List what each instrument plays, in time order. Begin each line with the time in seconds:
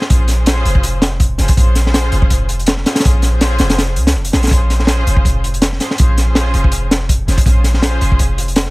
0.01 snare
0.10 808-style bass A#1, string section C#4 F4 G#4 C5, kick, closed hi-hat
0.28 snare, closed hi-hat
0.39 string section C#4 F4 G#4 C5
0.46 snare, closed hi-hat
0.65 808-style bass F1, closed hi-hat
0.75 kick
0.83 closed hi-hat
1.02 snare, closed hi-hat
1.20 kick, closed hi-hat
1.38 808-style bass F1, string section C#4 F4 G#4 C5, snare, closed hi-hat
1.48 kick, closed hi-hat
1.57 808-style bass A#1, string section C#4 F4 G#4 C5, kick, closed hi-hat
1.75 snare, closed hi-hat
1.85 string section C#4 F4 G#4 C5, snare
1.94 snare, closed hi-hat
2.12 808-style bass F1, closed hi-hat
2.22 kick
2.30 kick, closed hi-hat
2.49 closed hi-hat
2.59 closed hi-hat
2.66 snare, closed hi-hat
2.77 snare
2.86 string section C#4 F4 G#4 C5, snare, closed hi-hat
2.95 snare, closed hi-hat
3.00 snare, closed hi-hat
3.05 808-style bass A#1, string section C#4 F4 G#4 C5, kick, closed hi-hat
3.22 snare, closed hi-hat
3.33 string section C#4 F4 G#4 C5
3.41 snare, closed hi-hat
3.58 808-style bass F1, snare, closed hi-hat
3.70 snare, closed hi-hat
3.78 snare, closed hi-hat
3.96 808-style bass C#2, closed hi-hat
4.07 snare, closed hi-hat
4.15 808-style bass F1
4.25 closed hi-hat
4.33 808-style bass A#1, string section C#4 F4 G#4 C5, snare, closed hi-hat
4.43 snare, closed hi-hat
4.47 snare, closed hi-hat
4.51 808-style bass A#1, string section C#4 F4 G#4 C5, kick, closed hi-hat
4.70 snare, closed hi-hat
4.79 string section C#4 F4 G#4 C5, snare
4.87 snare, closed hi-hat
5.07 808-style bass F1, closed hi-hat
5.17 kick
5.25 kick, closed hi-hat
5.44 closed hi-hat
5.54 closed hi-hat
5.62 snare, closed hi-hat
5.72 snare
5.80 string section C#4 F4 G#4 C5, snare, closed hi-hat
5.91 snare
5.98 808-style bass A#1, string section C#4 F4 G#4 C5, kick, closed hi-hat
6.18 snare, closed hi-hat
6.27 string section C#4 F4 G#4 C5
6.35 snare, closed hi-hat
6.54 808-style bass F1, closed hi-hat
6.64 kick
6.72 closed hi-hat
6.91 snare, closed hi-hat
7.09 kick, closed hi-hat
7.27 808-style bass F1, string section C#4 F4 G#4 C5, snare, closed hi-hat
7.38 kick, closed hi-hat
7.46 808-style bass A#1, string section C#4 F4 G#4 C5, kick, closed hi-hat
7.64 snare, closed hi-hat
7.74 string section C#4 F4 G#4 C5, snare
7.82 snare, closed hi-hat
8.01 808-style bass F1, closed hi-hat
8.12 kick
8.19 kick, closed hi-hat
8.38 closed hi-hat
8.48 closed hi-hat
8.56 snare, closed hi-hat
8.66 snare